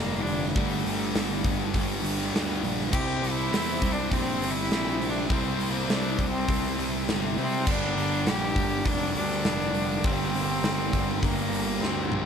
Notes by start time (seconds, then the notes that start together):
Already playing: F1 G2 D3 G3 A#3
0.12 snare
0.21 D4
0.26 G2 D3 G3, open hi-hat
0.51 A3
0.55 G1 G2 D3 G3, kick, open hi-hat
0.85 G1, open hi-hat
1.14 G1, snare, open hi-hat
1.44 G1, kick, open hi-hat
1.74 G1, kick, open hi-hat
2.03 G1, open hi-hat
2.21 snare
2.33 D2, snare, open hi-hat
2.63 A#1 G2 D3 G3, open hi-hat
2.91 C2 C3 G3 E4 G4 C5 G5, kick, crash
2.95 C4
3.23 C2, open hi-hat
3.32 E4
3.52 E2, snare, open hi-hat
3.82 C2, kick, open hi-hat
3.92 D4
4.11 A#1 C4, kick, open hi-hat
4.41 G1, open hi-hat
4.51 E4
4.70 A#1, snare, open hi-hat
5.00 C3 G3 C4, open hi-hat
5.10 D4
5.29 C2 C3 G3 C4 A5, kick, open hi-hat
5.59 C2, open hi-hat
5.70 A#3
5.88 C2 D4, snare, open hi-hat
6.19 C2, kick, open hi-hat
6.30 C4
6.48 C2, kick, open hi-hat
6.78 C2, open hi-hat
7.08 G1, snare, open hi-hat
7.37 C3 G3 C4, open hi-hat
7.66 G1 G2 D3 G3 G4 A#4, kick, crash
7.71 D4
7.96 G1, open hi-hat
8.26 A#1 G4, snare, open hi-hat
8.56 G1, kick, open hi-hat
8.85 F1 D4, kick, open hi-hat
9.15 D2 D4, open hi-hat
9.31 snare
9.44 F1, snare, open hi-hat
9.60 snare
9.74 G2 D3 G3, open hi-hat
10.03 G1 G2 D3 G3 C4 A#5, kick, open hi-hat
10.34 G1, open hi-hat
10.63 G1, snare, open hi-hat
10.93 G1, kick, open hi-hat
11.22 G1 A#3, kick, open hi-hat
11.51 G1, open hi-hat
11.81 D2 C4, snare
12.12 A#1 G2 D3 G3, mid tom